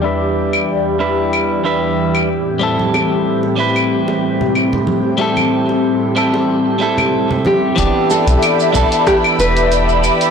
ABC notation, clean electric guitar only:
X:1
M:4/4
L:1/8
Q:"Swing 16ths" 1/4=93
K:Am
V:1 name="Clean electric guitar"
[G,DEB]3 [G,DEB]2 [G,DEB]2 z | [G,CEA]3 [G,CEB]4- [G,CEB] | [G,CEA]3 [G,CEA]2 [G,CEA]3 | [E,B,DG]3 [E,B,DA]4- [E,B,DA] |]